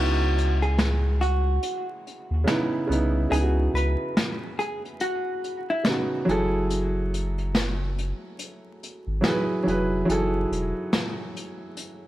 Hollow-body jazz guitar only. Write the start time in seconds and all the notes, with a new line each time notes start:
Already playing: F#4
0.62 G#4
1.21 F#4
3.32 G#4
3.75 B4
4.59 G#4
5.01 F#4
5.70 E4